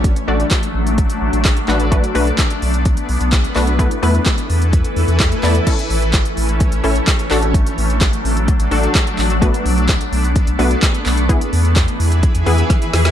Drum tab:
CC |----------------|----------------|----------------|x---------------|
HH |xx-xxx-xxx-xxx-x|xxoxxxoxxxoxxxox|xxoxxxoxxxoxxxox|xxoxxxoxxxoxxxox|
CP |----x-------x-x-|----x-------x-x-|----x-------x-x-|----x-------x-x-|
SD |----o-------o---|----o-------o---|----o-------o---|----o-------o---|
BD |o---o---o---o---|o---o---o---o---|o---o---o---o---|o---o---o---o---|

CC |----------------|----------------|----------------|
HH |xxoxxxoxxxoxxxox|xxoxxxoxxxoxxxox|xxoxxxoxxxoxxxox|
CP |----x-------x-x-|----x-------x-x-|----x-----------|
SD |----o-------o---|----o-------o---|----o-------o-oo|
BD |o---o---o---o---|o---o---o---o---|o---o---o---o---|